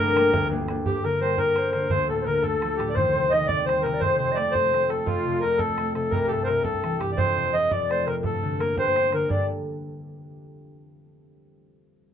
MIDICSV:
0, 0, Header, 1, 5, 480
1, 0, Start_track
1, 0, Key_signature, -2, "minor"
1, 0, Tempo, 351700
1, 1170, Time_signature, 6, 3, 24, 8
1, 16566, End_track
2, 0, Start_track
2, 0, Title_t, "Accordion"
2, 0, Program_c, 0, 21
2, 0, Note_on_c, 0, 70, 105
2, 652, Note_off_c, 0, 70, 0
2, 1168, Note_on_c, 0, 67, 76
2, 1422, Note_on_c, 0, 70, 83
2, 1430, Note_off_c, 0, 67, 0
2, 1639, Note_off_c, 0, 70, 0
2, 1652, Note_on_c, 0, 72, 94
2, 1878, Note_on_c, 0, 70, 99
2, 1894, Note_off_c, 0, 72, 0
2, 2328, Note_off_c, 0, 70, 0
2, 2348, Note_on_c, 0, 70, 75
2, 2588, Note_on_c, 0, 72, 104
2, 2602, Note_off_c, 0, 70, 0
2, 2833, Note_off_c, 0, 72, 0
2, 2843, Note_on_c, 0, 69, 83
2, 3081, Note_on_c, 0, 70, 87
2, 3093, Note_off_c, 0, 69, 0
2, 3297, Note_on_c, 0, 69, 92
2, 3328, Note_off_c, 0, 70, 0
2, 3777, Note_on_c, 0, 67, 80
2, 3815, Note_off_c, 0, 69, 0
2, 3941, Note_off_c, 0, 67, 0
2, 3953, Note_on_c, 0, 74, 79
2, 4011, Note_on_c, 0, 72, 88
2, 4047, Note_off_c, 0, 74, 0
2, 4502, Note_on_c, 0, 75, 102
2, 4532, Note_off_c, 0, 72, 0
2, 4734, Note_off_c, 0, 75, 0
2, 4739, Note_on_c, 0, 74, 116
2, 4989, Note_off_c, 0, 74, 0
2, 4993, Note_on_c, 0, 72, 90
2, 5215, Note_on_c, 0, 70, 78
2, 5223, Note_off_c, 0, 72, 0
2, 5464, Note_on_c, 0, 72, 105
2, 5476, Note_off_c, 0, 70, 0
2, 5680, Note_off_c, 0, 72, 0
2, 5700, Note_on_c, 0, 72, 89
2, 5936, Note_on_c, 0, 74, 98
2, 5962, Note_off_c, 0, 72, 0
2, 6161, Note_on_c, 0, 72, 103
2, 6197, Note_off_c, 0, 74, 0
2, 6673, Note_on_c, 0, 69, 78
2, 6687, Note_off_c, 0, 72, 0
2, 6905, Note_on_c, 0, 65, 89
2, 6925, Note_off_c, 0, 69, 0
2, 7378, Note_on_c, 0, 70, 90
2, 7419, Note_off_c, 0, 65, 0
2, 7608, Note_on_c, 0, 69, 103
2, 7638, Note_off_c, 0, 70, 0
2, 8086, Note_off_c, 0, 69, 0
2, 8106, Note_on_c, 0, 69, 73
2, 8335, Note_on_c, 0, 70, 84
2, 8362, Note_off_c, 0, 69, 0
2, 8549, Note_off_c, 0, 70, 0
2, 8554, Note_on_c, 0, 67, 53
2, 8561, Note_on_c, 0, 69, 85
2, 8620, Note_off_c, 0, 67, 0
2, 8773, Note_off_c, 0, 69, 0
2, 8782, Note_on_c, 0, 72, 56
2, 8802, Note_on_c, 0, 70, 85
2, 8849, Note_off_c, 0, 72, 0
2, 9044, Note_off_c, 0, 70, 0
2, 9044, Note_on_c, 0, 69, 96
2, 9541, Note_on_c, 0, 67, 66
2, 9569, Note_off_c, 0, 69, 0
2, 9704, Note_off_c, 0, 67, 0
2, 9720, Note_on_c, 0, 74, 75
2, 9796, Note_on_c, 0, 72, 103
2, 9811, Note_off_c, 0, 74, 0
2, 10280, Note_on_c, 0, 75, 92
2, 10305, Note_off_c, 0, 72, 0
2, 10525, Note_on_c, 0, 74, 98
2, 10529, Note_off_c, 0, 75, 0
2, 10789, Note_off_c, 0, 74, 0
2, 10796, Note_on_c, 0, 72, 86
2, 11026, Note_on_c, 0, 70, 77
2, 11030, Note_off_c, 0, 72, 0
2, 11129, Note_off_c, 0, 70, 0
2, 11258, Note_on_c, 0, 69, 79
2, 11733, Note_on_c, 0, 70, 77
2, 11755, Note_off_c, 0, 69, 0
2, 11952, Note_off_c, 0, 70, 0
2, 11990, Note_on_c, 0, 72, 105
2, 12479, Note_on_c, 0, 70, 67
2, 12481, Note_off_c, 0, 72, 0
2, 12686, Note_off_c, 0, 70, 0
2, 12695, Note_on_c, 0, 74, 71
2, 12928, Note_off_c, 0, 74, 0
2, 16566, End_track
3, 0, Start_track
3, 0, Title_t, "Flute"
3, 0, Program_c, 1, 73
3, 0, Note_on_c, 1, 70, 83
3, 714, Note_off_c, 1, 70, 0
3, 1175, Note_on_c, 1, 67, 80
3, 1426, Note_on_c, 1, 70, 85
3, 1446, Note_off_c, 1, 67, 0
3, 1883, Note_off_c, 1, 70, 0
3, 1891, Note_on_c, 1, 70, 67
3, 2154, Note_on_c, 1, 72, 75
3, 2174, Note_off_c, 1, 70, 0
3, 2603, Note_off_c, 1, 72, 0
3, 2612, Note_on_c, 1, 72, 86
3, 2859, Note_on_c, 1, 69, 81
3, 2880, Note_off_c, 1, 72, 0
3, 3010, Note_off_c, 1, 69, 0
3, 3018, Note_on_c, 1, 72, 50
3, 3069, Note_on_c, 1, 70, 80
3, 3090, Note_off_c, 1, 72, 0
3, 3318, Note_on_c, 1, 69, 93
3, 3338, Note_off_c, 1, 70, 0
3, 4033, Note_on_c, 1, 72, 82
3, 4053, Note_off_c, 1, 69, 0
3, 4544, Note_on_c, 1, 75, 87
3, 4565, Note_off_c, 1, 72, 0
3, 4759, Note_on_c, 1, 74, 77
3, 4780, Note_off_c, 1, 75, 0
3, 5009, Note_off_c, 1, 74, 0
3, 5017, Note_on_c, 1, 72, 79
3, 5237, Note_on_c, 1, 70, 62
3, 5258, Note_off_c, 1, 72, 0
3, 5376, Note_on_c, 1, 74, 67
3, 5396, Note_off_c, 1, 70, 0
3, 5470, Note_on_c, 1, 72, 90
3, 5490, Note_off_c, 1, 74, 0
3, 5894, Note_on_c, 1, 75, 50
3, 5915, Note_off_c, 1, 72, 0
3, 5972, Note_on_c, 1, 74, 70
3, 5992, Note_off_c, 1, 75, 0
3, 6210, Note_on_c, 1, 72, 78
3, 6230, Note_off_c, 1, 74, 0
3, 6697, Note_off_c, 1, 72, 0
3, 6703, Note_on_c, 1, 69, 65
3, 6917, Note_off_c, 1, 69, 0
3, 6928, Note_on_c, 1, 65, 82
3, 7382, Note_off_c, 1, 65, 0
3, 7421, Note_on_c, 1, 70, 67
3, 7636, Note_off_c, 1, 70, 0
3, 7648, Note_on_c, 1, 69, 79
3, 8102, Note_off_c, 1, 69, 0
3, 8129, Note_on_c, 1, 69, 71
3, 8371, Note_on_c, 1, 70, 79
3, 8392, Note_off_c, 1, 69, 0
3, 8614, Note_off_c, 1, 70, 0
3, 8622, Note_on_c, 1, 69, 78
3, 8856, Note_on_c, 1, 70, 68
3, 8877, Note_off_c, 1, 69, 0
3, 9091, Note_on_c, 1, 69, 76
3, 9112, Note_off_c, 1, 70, 0
3, 9329, Note_off_c, 1, 69, 0
3, 9337, Note_on_c, 1, 69, 67
3, 9557, Note_off_c, 1, 69, 0
3, 9586, Note_on_c, 1, 67, 63
3, 9793, Note_off_c, 1, 67, 0
3, 9802, Note_on_c, 1, 72, 87
3, 10195, Note_off_c, 1, 72, 0
3, 10518, Note_on_c, 1, 74, 86
3, 11010, Note_on_c, 1, 70, 68
3, 11030, Note_off_c, 1, 74, 0
3, 11246, Note_on_c, 1, 69, 69
3, 11266, Note_off_c, 1, 70, 0
3, 11742, Note_on_c, 1, 70, 65
3, 11763, Note_off_c, 1, 69, 0
3, 11973, Note_off_c, 1, 70, 0
3, 11981, Note_on_c, 1, 72, 78
3, 12469, Note_on_c, 1, 70, 63
3, 12490, Note_off_c, 1, 72, 0
3, 12687, Note_off_c, 1, 70, 0
3, 12696, Note_on_c, 1, 74, 82
3, 12929, Note_off_c, 1, 74, 0
3, 16566, End_track
4, 0, Start_track
4, 0, Title_t, "Harp"
4, 0, Program_c, 2, 46
4, 0, Note_on_c, 2, 31, 63
4, 0, Note_on_c, 2, 43, 79
4, 0, Note_on_c, 2, 55, 53
4, 0, Note_on_c, 2, 58, 54
4, 0, Note_on_c, 2, 60, 64
4, 0, Note_on_c, 2, 62, 64
4, 187, Note_off_c, 2, 55, 0
4, 201, Note_on_c, 2, 55, 58
4, 202, Note_off_c, 2, 58, 0
4, 206, Note_off_c, 2, 62, 0
4, 207, Note_on_c, 2, 58, 53
4, 211, Note_on_c, 2, 62, 64
4, 451, Note_on_c, 2, 38, 69
4, 518, Note_off_c, 2, 43, 0
4, 677, Note_off_c, 2, 55, 0
4, 693, Note_on_c, 2, 55, 53
4, 697, Note_off_c, 2, 58, 0
4, 702, Note_on_c, 2, 58, 48
4, 705, Note_off_c, 2, 62, 0
4, 710, Note_on_c, 2, 62, 54
4, 929, Note_off_c, 2, 55, 0
4, 946, Note_off_c, 2, 58, 0
4, 946, Note_on_c, 2, 55, 53
4, 952, Note_on_c, 2, 58, 50
4, 956, Note_off_c, 2, 62, 0
4, 961, Note_on_c, 2, 62, 55
4, 1169, Note_on_c, 2, 43, 62
4, 1237, Note_off_c, 2, 31, 0
4, 1237, Note_off_c, 2, 38, 0
4, 1237, Note_off_c, 2, 55, 0
4, 1418, Note_on_c, 2, 50, 51
4, 1657, Note_on_c, 2, 55, 58
4, 1875, Note_off_c, 2, 62, 0
4, 1881, Note_on_c, 2, 62, 50
4, 2126, Note_off_c, 2, 58, 0
4, 2132, Note_on_c, 2, 58, 48
4, 2356, Note_off_c, 2, 50, 0
4, 2372, Note_on_c, 2, 50, 52
4, 2437, Note_off_c, 2, 55, 0
4, 2602, Note_on_c, 2, 38, 61
4, 2677, Note_off_c, 2, 43, 0
4, 2677, Note_off_c, 2, 50, 0
4, 2859, Note_on_c, 2, 45, 47
4, 2941, Note_off_c, 2, 58, 0
4, 3095, Note_on_c, 2, 50, 65
4, 3157, Note_off_c, 2, 45, 0
4, 3325, Note_on_c, 2, 57, 45
4, 3584, Note_on_c, 2, 53, 57
4, 3599, Note_off_c, 2, 60, 0
4, 3815, Note_on_c, 2, 45, 56
4, 3877, Note_off_c, 2, 50, 0
4, 4048, Note_on_c, 2, 39, 70
4, 4117, Note_off_c, 2, 38, 0
4, 4117, Note_off_c, 2, 45, 0
4, 4117, Note_off_c, 2, 53, 0
4, 4129, Note_off_c, 2, 62, 0
4, 4301, Note_on_c, 2, 48, 54
4, 4544, Note_on_c, 2, 51, 56
4, 4597, Note_off_c, 2, 48, 0
4, 4769, Note_on_c, 2, 60, 52
4, 5026, Note_on_c, 2, 55, 55
4, 5245, Note_on_c, 2, 48, 59
4, 5317, Note_off_c, 2, 51, 0
4, 5475, Note_on_c, 2, 41, 61
4, 5557, Note_off_c, 2, 39, 0
4, 5557, Note_off_c, 2, 48, 0
4, 5557, Note_off_c, 2, 55, 0
4, 5719, Note_on_c, 2, 48, 54
4, 5929, Note_off_c, 2, 57, 0
4, 5935, Note_on_c, 2, 57, 57
4, 6195, Note_off_c, 2, 60, 0
4, 6200, Note_on_c, 2, 60, 51
4, 6447, Note_off_c, 2, 57, 0
4, 6453, Note_on_c, 2, 57, 49
4, 6659, Note_off_c, 2, 48, 0
4, 6676, Note_on_c, 2, 48, 51
4, 6893, Note_off_c, 2, 41, 0
4, 6910, Note_on_c, 2, 41, 64
4, 7164, Note_off_c, 2, 48, 0
4, 7180, Note_on_c, 2, 48, 46
4, 7401, Note_off_c, 2, 57, 0
4, 7407, Note_on_c, 2, 57, 51
4, 7629, Note_off_c, 2, 60, 0
4, 7634, Note_on_c, 2, 60, 56
4, 7892, Note_off_c, 2, 57, 0
4, 7897, Note_on_c, 2, 57, 56
4, 8108, Note_off_c, 2, 48, 0
4, 8124, Note_on_c, 2, 48, 54
4, 8367, Note_on_c, 2, 36, 65
4, 8438, Note_off_c, 2, 41, 0
4, 8438, Note_off_c, 2, 48, 0
4, 8630, Note_on_c, 2, 43, 53
4, 8861, Note_on_c, 2, 48, 65
4, 8918, Note_off_c, 2, 43, 0
4, 9081, Note_on_c, 2, 55, 54
4, 9329, Note_on_c, 2, 52, 60
4, 9558, Note_on_c, 2, 43, 53
4, 9638, Note_off_c, 2, 48, 0
4, 9785, Note_on_c, 2, 41, 73
4, 9878, Note_off_c, 2, 36, 0
4, 9878, Note_off_c, 2, 43, 0
4, 9878, Note_off_c, 2, 52, 0
4, 9878, Note_off_c, 2, 55, 0
4, 10053, Note_on_c, 2, 48, 55
4, 10285, Note_on_c, 2, 53, 58
4, 10509, Note_off_c, 2, 60, 0
4, 10515, Note_on_c, 2, 60, 49
4, 10762, Note_off_c, 2, 57, 0
4, 10768, Note_on_c, 2, 57, 50
4, 10986, Note_off_c, 2, 48, 0
4, 11002, Note_on_c, 2, 48, 50
4, 11078, Note_off_c, 2, 53, 0
4, 11232, Note_on_c, 2, 43, 73
4, 11318, Note_off_c, 2, 41, 0
4, 11318, Note_off_c, 2, 48, 0
4, 11501, Note_on_c, 2, 50, 52
4, 11742, Note_on_c, 2, 58, 53
4, 11824, Note_off_c, 2, 57, 0
4, 11966, Note_off_c, 2, 58, 0
4, 11980, Note_on_c, 2, 67, 47
4, 12222, Note_off_c, 2, 67, 0
4, 12230, Note_on_c, 2, 62, 48
4, 12443, Note_off_c, 2, 50, 0
4, 12453, Note_off_c, 2, 62, 0
4, 12459, Note_on_c, 2, 50, 52
4, 12658, Note_off_c, 2, 43, 0
4, 12659, Note_off_c, 2, 50, 0
4, 12670, Note_on_c, 2, 43, 46
4, 12676, Note_on_c, 2, 55, 48
4, 12679, Note_on_c, 2, 50, 44
4, 12689, Note_on_c, 2, 58, 45
4, 12695, Note_on_c, 2, 62, 49
4, 12700, Note_on_c, 2, 69, 57
4, 12917, Note_off_c, 2, 43, 0
4, 12918, Note_off_c, 2, 50, 0
4, 12921, Note_off_c, 2, 55, 0
4, 12923, Note_off_c, 2, 58, 0
4, 12929, Note_off_c, 2, 69, 0
4, 12931, Note_off_c, 2, 62, 0
4, 14609, Note_off_c, 2, 60, 0
4, 16566, End_track
5, 0, Start_track
5, 0, Title_t, "Bodhran"
5, 228, Note_on_c, 9, 64, 73
5, 364, Note_off_c, 9, 64, 0
5, 458, Note_on_c, 9, 64, 88
5, 595, Note_off_c, 9, 64, 0
5, 708, Note_on_c, 9, 64, 26
5, 844, Note_off_c, 9, 64, 0
5, 934, Note_on_c, 9, 64, 55
5, 1070, Note_off_c, 9, 64, 0
5, 1171, Note_on_c, 9, 64, 67
5, 1308, Note_off_c, 9, 64, 0
5, 1422, Note_on_c, 9, 64, 21
5, 1558, Note_off_c, 9, 64, 0
5, 1884, Note_on_c, 9, 64, 66
5, 2000, Note_off_c, 9, 64, 0
5, 2000, Note_on_c, 9, 64, 23
5, 2127, Note_off_c, 9, 64, 0
5, 2127, Note_on_c, 9, 64, 58
5, 2264, Note_off_c, 9, 64, 0
5, 2361, Note_on_c, 9, 64, 50
5, 2498, Note_off_c, 9, 64, 0
5, 2594, Note_on_c, 9, 64, 67
5, 2730, Note_off_c, 9, 64, 0
5, 2862, Note_on_c, 9, 64, 22
5, 2998, Note_off_c, 9, 64, 0
5, 3317, Note_on_c, 9, 64, 65
5, 3445, Note_off_c, 9, 64, 0
5, 3445, Note_on_c, 9, 64, 22
5, 3578, Note_off_c, 9, 64, 0
5, 3578, Note_on_c, 9, 64, 59
5, 3714, Note_off_c, 9, 64, 0
5, 3821, Note_on_c, 9, 64, 55
5, 3958, Note_off_c, 9, 64, 0
5, 4052, Note_on_c, 9, 64, 65
5, 4188, Note_off_c, 9, 64, 0
5, 4299, Note_on_c, 9, 64, 23
5, 4435, Note_off_c, 9, 64, 0
5, 4765, Note_on_c, 9, 64, 71
5, 4899, Note_off_c, 9, 64, 0
5, 4899, Note_on_c, 9, 64, 23
5, 5035, Note_off_c, 9, 64, 0
5, 5037, Note_on_c, 9, 64, 61
5, 5173, Note_off_c, 9, 64, 0
5, 5272, Note_on_c, 9, 64, 50
5, 5408, Note_off_c, 9, 64, 0
5, 5483, Note_on_c, 9, 64, 58
5, 5619, Note_off_c, 9, 64, 0
5, 5749, Note_on_c, 9, 64, 22
5, 5886, Note_off_c, 9, 64, 0
5, 5972, Note_on_c, 9, 64, 52
5, 6108, Note_off_c, 9, 64, 0
5, 6214, Note_on_c, 9, 64, 68
5, 6344, Note_off_c, 9, 64, 0
5, 6344, Note_on_c, 9, 64, 20
5, 6471, Note_off_c, 9, 64, 0
5, 6471, Note_on_c, 9, 64, 50
5, 6607, Note_off_c, 9, 64, 0
5, 6691, Note_on_c, 9, 64, 52
5, 6827, Note_off_c, 9, 64, 0
5, 6921, Note_on_c, 9, 64, 72
5, 7057, Note_off_c, 9, 64, 0
5, 7183, Note_on_c, 9, 64, 25
5, 7320, Note_off_c, 9, 64, 0
5, 7632, Note_on_c, 9, 64, 69
5, 7769, Note_off_c, 9, 64, 0
5, 7769, Note_on_c, 9, 64, 24
5, 7887, Note_off_c, 9, 64, 0
5, 7887, Note_on_c, 9, 64, 60
5, 8023, Note_off_c, 9, 64, 0
5, 8125, Note_on_c, 9, 64, 52
5, 8262, Note_off_c, 9, 64, 0
5, 8355, Note_on_c, 9, 64, 74
5, 8492, Note_off_c, 9, 64, 0
5, 8605, Note_on_c, 9, 64, 27
5, 8741, Note_off_c, 9, 64, 0
5, 9070, Note_on_c, 9, 64, 75
5, 9203, Note_off_c, 9, 64, 0
5, 9203, Note_on_c, 9, 64, 30
5, 9332, Note_off_c, 9, 64, 0
5, 9332, Note_on_c, 9, 64, 56
5, 9468, Note_off_c, 9, 64, 0
5, 9564, Note_on_c, 9, 64, 59
5, 9701, Note_off_c, 9, 64, 0
5, 9804, Note_on_c, 9, 64, 92
5, 9940, Note_off_c, 9, 64, 0
5, 10047, Note_on_c, 9, 64, 28
5, 10184, Note_off_c, 9, 64, 0
5, 10527, Note_on_c, 9, 64, 75
5, 10664, Note_off_c, 9, 64, 0
5, 10667, Note_on_c, 9, 64, 25
5, 10793, Note_off_c, 9, 64, 0
5, 10793, Note_on_c, 9, 64, 58
5, 10929, Note_off_c, 9, 64, 0
5, 11025, Note_on_c, 9, 64, 54
5, 11162, Note_off_c, 9, 64, 0
5, 11250, Note_on_c, 9, 64, 67
5, 11386, Note_off_c, 9, 64, 0
5, 11516, Note_on_c, 9, 64, 23
5, 11653, Note_off_c, 9, 64, 0
5, 11745, Note_on_c, 9, 64, 50
5, 11881, Note_off_c, 9, 64, 0
5, 11976, Note_on_c, 9, 64, 73
5, 12110, Note_off_c, 9, 64, 0
5, 12110, Note_on_c, 9, 64, 24
5, 12231, Note_off_c, 9, 64, 0
5, 12231, Note_on_c, 9, 64, 61
5, 12368, Note_off_c, 9, 64, 0
5, 12454, Note_on_c, 9, 64, 51
5, 12590, Note_off_c, 9, 64, 0
5, 12695, Note_on_c, 9, 64, 72
5, 12832, Note_off_c, 9, 64, 0
5, 16566, End_track
0, 0, End_of_file